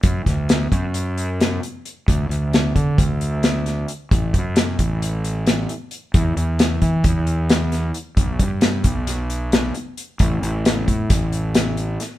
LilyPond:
<<
  \new Staff \with { instrumentName = "Fingered electric bass" } { \clef bass \time 9/8 \key e \minor \tempo 4. = 89 fis,8 d,4 fis,2 r4 | d,8 d,4 d8 d,2 r8 | a,,8 fis,4 a,,2 r4 | e,8 e,4 e8 e,2 r8 |
b,,8 g,4 b,,2 r4 | a,,8 a,,4 a,8 a,,2 r8 | }
  \new DrumStaff \with { instrumentName = "Drums" } \drummode { \time 9/8 <hh bd>8 <hh bd sn>8 <hh sn>8 <hh bd>8 hh8 hh8 <hh sn>8 hh8 hh8 | <hh bd>8 hh8 <hh sn>8 <hh bd>8 <hh bd>8 hh8 <hh sn>8 <hh sn>8 hh8 | <hh bd>8 <hh bd>8 <hh sn>8 <hh bd>8 hh8 hh8 <hh sn>8 hh8 hh8 | <hh bd>8 hh8 <hh sn>8 <hh bd>8 <hh bd>8 hh8 <hh sn>8 <hh sn>8 hh8 |
<hh bd>8 <hh bd>8 <hh sn>8 <hh bd>8 <hh sn>8 hh8 <hh sn>8 hh8 hh8 | <hh bd>8 hh8 <hh sn>8 <hh bd>8 <hh bd sn>8 hh8 <hh sn>8 hh8 <hh sn>8 | }
>>